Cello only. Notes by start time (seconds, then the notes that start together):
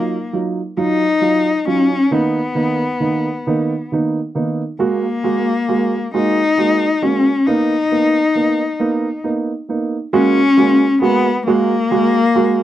Already playing: A#3
0.80 D#4
1.69 C#4
2.15 B3
4.82 A#3
6.15 D#4
7.03 C#4
7.47 D#4
10.14 C#4
11.02 B3
11.46 A#3